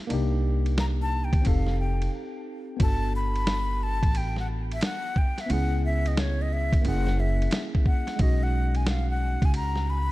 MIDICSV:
0, 0, Header, 1, 5, 480
1, 0, Start_track
1, 0, Tempo, 674157
1, 74, Time_signature, 4, 2, 24, 8
1, 7203, End_track
2, 0, Start_track
2, 0, Title_t, "Flute"
2, 0, Program_c, 0, 73
2, 570, Note_on_c, 0, 82, 99
2, 612, Note_off_c, 0, 82, 0
2, 729, Note_on_c, 0, 81, 98
2, 885, Note_on_c, 0, 79, 85
2, 896, Note_off_c, 0, 81, 0
2, 1044, Note_on_c, 0, 77, 85
2, 1054, Note_off_c, 0, 79, 0
2, 1279, Note_off_c, 0, 77, 0
2, 1284, Note_on_c, 0, 79, 70
2, 1503, Note_off_c, 0, 79, 0
2, 2013, Note_on_c, 0, 81, 113
2, 2228, Note_off_c, 0, 81, 0
2, 2250, Note_on_c, 0, 83, 103
2, 2729, Note_on_c, 0, 81, 101
2, 2739, Note_off_c, 0, 83, 0
2, 2969, Note_on_c, 0, 79, 100
2, 2980, Note_off_c, 0, 81, 0
2, 3120, Note_off_c, 0, 79, 0
2, 3131, Note_on_c, 0, 78, 91
2, 3183, Note_off_c, 0, 78, 0
2, 3369, Note_on_c, 0, 76, 86
2, 3437, Note_off_c, 0, 76, 0
2, 3451, Note_on_c, 0, 78, 90
2, 3689, Note_on_c, 0, 79, 95
2, 3699, Note_off_c, 0, 78, 0
2, 3850, Note_on_c, 0, 76, 89
2, 3860, Note_off_c, 0, 79, 0
2, 3925, Note_on_c, 0, 78, 103
2, 3935, Note_off_c, 0, 76, 0
2, 4160, Note_off_c, 0, 78, 0
2, 4170, Note_on_c, 0, 76, 97
2, 4326, Note_on_c, 0, 75, 81
2, 4337, Note_off_c, 0, 76, 0
2, 4407, Note_on_c, 0, 73, 87
2, 4418, Note_off_c, 0, 75, 0
2, 4569, Note_on_c, 0, 75, 91
2, 4580, Note_off_c, 0, 73, 0
2, 4647, Note_on_c, 0, 76, 94
2, 4658, Note_off_c, 0, 75, 0
2, 4881, Note_off_c, 0, 76, 0
2, 4890, Note_on_c, 0, 78, 104
2, 5126, Note_on_c, 0, 76, 89
2, 5136, Note_off_c, 0, 78, 0
2, 5423, Note_off_c, 0, 76, 0
2, 5603, Note_on_c, 0, 78, 89
2, 5847, Note_on_c, 0, 75, 100
2, 5857, Note_off_c, 0, 78, 0
2, 6004, Note_on_c, 0, 78, 93
2, 6014, Note_off_c, 0, 75, 0
2, 6240, Note_on_c, 0, 80, 82
2, 6251, Note_off_c, 0, 78, 0
2, 6323, Note_on_c, 0, 77, 91
2, 6334, Note_off_c, 0, 80, 0
2, 6477, Note_off_c, 0, 77, 0
2, 6484, Note_on_c, 0, 78, 91
2, 6729, Note_on_c, 0, 80, 84
2, 6740, Note_off_c, 0, 78, 0
2, 6803, Note_off_c, 0, 80, 0
2, 6807, Note_on_c, 0, 82, 97
2, 7048, Note_on_c, 0, 83, 90
2, 7058, Note_off_c, 0, 82, 0
2, 7203, Note_off_c, 0, 83, 0
2, 7203, End_track
3, 0, Start_track
3, 0, Title_t, "Tine electric piano"
3, 0, Program_c, 1, 4
3, 51, Note_on_c, 1, 58, 76
3, 66, Note_on_c, 1, 62, 67
3, 80, Note_on_c, 1, 63, 75
3, 97, Note_on_c, 1, 67, 88
3, 1003, Note_off_c, 1, 58, 0
3, 1008, Note_on_c, 1, 60, 57
3, 1011, Note_off_c, 1, 62, 0
3, 1014, Note_off_c, 1, 63, 0
3, 1023, Note_on_c, 1, 63, 55
3, 1026, Note_off_c, 1, 67, 0
3, 1038, Note_on_c, 1, 67, 52
3, 1053, Note_on_c, 1, 69, 70
3, 1962, Note_off_c, 1, 60, 0
3, 1969, Note_off_c, 1, 63, 0
3, 1970, Note_on_c, 1, 59, 63
3, 1977, Note_off_c, 1, 67, 0
3, 1985, Note_off_c, 1, 69, 0
3, 1986, Note_on_c, 1, 62, 52
3, 2001, Note_on_c, 1, 66, 61
3, 2017, Note_on_c, 1, 69, 73
3, 3874, Note_off_c, 1, 59, 0
3, 3882, Note_off_c, 1, 62, 0
3, 3889, Note_off_c, 1, 66, 0
3, 3889, Note_on_c, 1, 59, 66
3, 3897, Note_off_c, 1, 69, 0
3, 3905, Note_on_c, 1, 61, 61
3, 3921, Note_on_c, 1, 64, 56
3, 3937, Note_on_c, 1, 68, 72
3, 4842, Note_off_c, 1, 59, 0
3, 4850, Note_off_c, 1, 61, 0
3, 4852, Note_on_c, 1, 58, 62
3, 4859, Note_off_c, 1, 64, 0
3, 4867, Note_off_c, 1, 68, 0
3, 4867, Note_on_c, 1, 61, 57
3, 4884, Note_on_c, 1, 64, 54
3, 4899, Note_on_c, 1, 68, 68
3, 5804, Note_off_c, 1, 58, 0
3, 5811, Note_on_c, 1, 56, 61
3, 5812, Note_off_c, 1, 61, 0
3, 5820, Note_off_c, 1, 64, 0
3, 5828, Note_off_c, 1, 68, 0
3, 5828, Note_on_c, 1, 61, 56
3, 5843, Note_on_c, 1, 63, 57
3, 5859, Note_on_c, 1, 66, 77
3, 7203, Note_off_c, 1, 56, 0
3, 7203, Note_off_c, 1, 61, 0
3, 7203, Note_off_c, 1, 63, 0
3, 7203, Note_off_c, 1, 66, 0
3, 7203, End_track
4, 0, Start_track
4, 0, Title_t, "Upright bass"
4, 0, Program_c, 2, 32
4, 75, Note_on_c, 2, 36, 95
4, 924, Note_off_c, 2, 36, 0
4, 946, Note_on_c, 2, 39, 91
4, 1022, Note_off_c, 2, 39, 0
4, 1045, Note_on_c, 2, 29, 101
4, 1470, Note_off_c, 2, 29, 0
4, 1995, Note_on_c, 2, 31, 99
4, 2845, Note_off_c, 2, 31, 0
4, 2869, Note_on_c, 2, 33, 84
4, 3404, Note_off_c, 2, 33, 0
4, 3917, Note_on_c, 2, 37, 108
4, 4765, Note_off_c, 2, 37, 0
4, 4789, Note_on_c, 2, 39, 96
4, 4864, Note_off_c, 2, 39, 0
4, 4876, Note_on_c, 2, 30, 116
4, 5305, Note_off_c, 2, 30, 0
4, 5835, Note_on_c, 2, 35, 114
4, 6685, Note_off_c, 2, 35, 0
4, 6707, Note_on_c, 2, 37, 86
4, 7203, Note_off_c, 2, 37, 0
4, 7203, End_track
5, 0, Start_track
5, 0, Title_t, "Drums"
5, 72, Note_on_c, 9, 51, 74
5, 143, Note_off_c, 9, 51, 0
5, 469, Note_on_c, 9, 51, 51
5, 541, Note_off_c, 9, 51, 0
5, 553, Note_on_c, 9, 44, 41
5, 553, Note_on_c, 9, 51, 53
5, 554, Note_on_c, 9, 38, 104
5, 624, Note_off_c, 9, 44, 0
5, 624, Note_off_c, 9, 51, 0
5, 625, Note_off_c, 9, 38, 0
5, 945, Note_on_c, 9, 36, 96
5, 948, Note_on_c, 9, 51, 56
5, 1016, Note_off_c, 9, 36, 0
5, 1019, Note_off_c, 9, 51, 0
5, 1031, Note_on_c, 9, 51, 76
5, 1042, Note_on_c, 9, 36, 91
5, 1102, Note_off_c, 9, 51, 0
5, 1113, Note_off_c, 9, 36, 0
5, 1186, Note_on_c, 9, 38, 33
5, 1257, Note_off_c, 9, 38, 0
5, 1436, Note_on_c, 9, 51, 54
5, 1507, Note_off_c, 9, 51, 0
5, 1992, Note_on_c, 9, 51, 78
5, 1994, Note_on_c, 9, 36, 119
5, 2063, Note_off_c, 9, 51, 0
5, 2065, Note_off_c, 9, 36, 0
5, 2389, Note_on_c, 9, 51, 49
5, 2460, Note_off_c, 9, 51, 0
5, 2470, Note_on_c, 9, 44, 40
5, 2470, Note_on_c, 9, 51, 58
5, 2471, Note_on_c, 9, 38, 111
5, 2541, Note_off_c, 9, 44, 0
5, 2541, Note_off_c, 9, 51, 0
5, 2542, Note_off_c, 9, 38, 0
5, 2867, Note_on_c, 9, 36, 93
5, 2871, Note_on_c, 9, 51, 57
5, 2938, Note_off_c, 9, 36, 0
5, 2942, Note_off_c, 9, 51, 0
5, 2952, Note_on_c, 9, 51, 74
5, 3024, Note_off_c, 9, 51, 0
5, 3107, Note_on_c, 9, 38, 35
5, 3179, Note_off_c, 9, 38, 0
5, 3357, Note_on_c, 9, 51, 55
5, 3426, Note_off_c, 9, 51, 0
5, 3426, Note_on_c, 9, 44, 57
5, 3426, Note_on_c, 9, 51, 74
5, 3436, Note_on_c, 9, 38, 113
5, 3497, Note_off_c, 9, 44, 0
5, 3497, Note_off_c, 9, 51, 0
5, 3507, Note_off_c, 9, 38, 0
5, 3674, Note_on_c, 9, 36, 90
5, 3745, Note_off_c, 9, 36, 0
5, 3829, Note_on_c, 9, 38, 33
5, 3832, Note_on_c, 9, 51, 64
5, 3900, Note_off_c, 9, 38, 0
5, 3903, Note_off_c, 9, 51, 0
5, 3915, Note_on_c, 9, 51, 74
5, 3986, Note_off_c, 9, 51, 0
5, 4312, Note_on_c, 9, 51, 57
5, 4384, Note_off_c, 9, 51, 0
5, 4396, Note_on_c, 9, 38, 112
5, 4396, Note_on_c, 9, 44, 38
5, 4396, Note_on_c, 9, 51, 55
5, 4467, Note_off_c, 9, 44, 0
5, 4467, Note_off_c, 9, 51, 0
5, 4468, Note_off_c, 9, 38, 0
5, 4788, Note_on_c, 9, 36, 105
5, 4794, Note_on_c, 9, 51, 62
5, 4860, Note_off_c, 9, 36, 0
5, 4865, Note_off_c, 9, 51, 0
5, 4874, Note_on_c, 9, 51, 74
5, 4946, Note_off_c, 9, 51, 0
5, 5032, Note_on_c, 9, 38, 35
5, 5104, Note_off_c, 9, 38, 0
5, 5282, Note_on_c, 9, 51, 53
5, 5348, Note_off_c, 9, 51, 0
5, 5348, Note_on_c, 9, 44, 57
5, 5348, Note_on_c, 9, 51, 78
5, 5358, Note_on_c, 9, 38, 117
5, 5419, Note_off_c, 9, 44, 0
5, 5419, Note_off_c, 9, 51, 0
5, 5429, Note_off_c, 9, 38, 0
5, 5516, Note_on_c, 9, 36, 91
5, 5587, Note_off_c, 9, 36, 0
5, 5593, Note_on_c, 9, 36, 100
5, 5665, Note_off_c, 9, 36, 0
5, 5747, Note_on_c, 9, 38, 37
5, 5750, Note_on_c, 9, 51, 61
5, 5818, Note_off_c, 9, 38, 0
5, 5821, Note_off_c, 9, 51, 0
5, 5831, Note_on_c, 9, 51, 80
5, 5835, Note_on_c, 9, 36, 113
5, 5903, Note_off_c, 9, 51, 0
5, 5906, Note_off_c, 9, 36, 0
5, 6227, Note_on_c, 9, 51, 53
5, 6298, Note_off_c, 9, 51, 0
5, 6312, Note_on_c, 9, 44, 40
5, 6312, Note_on_c, 9, 51, 59
5, 6313, Note_on_c, 9, 38, 110
5, 6383, Note_off_c, 9, 44, 0
5, 6383, Note_off_c, 9, 51, 0
5, 6384, Note_off_c, 9, 38, 0
5, 6707, Note_on_c, 9, 36, 94
5, 6709, Note_on_c, 9, 51, 59
5, 6778, Note_off_c, 9, 36, 0
5, 6781, Note_off_c, 9, 51, 0
5, 6791, Note_on_c, 9, 51, 74
5, 6862, Note_off_c, 9, 51, 0
5, 6946, Note_on_c, 9, 38, 35
5, 7017, Note_off_c, 9, 38, 0
5, 7203, End_track
0, 0, End_of_file